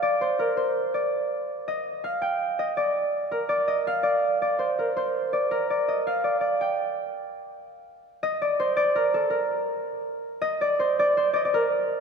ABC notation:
X:1
M:6/8
L:1/16
Q:3/8=110
K:Bb
V:1 name="Harp"
d2 c2 B2 c4 d2 | z6 e4 f2 | g4 e2 d6 | B2 d2 e2 f2 d4 |
d2 c2 B2 c4 d2 | B2 d2 e2 f2 d2 d2 | g8- g2 z2 | z6 e2 d2 c2 |
d2 B2 A2 B6 | z6 e2 d2 c2 | d2 c2 d/2 e/2 d B6 |]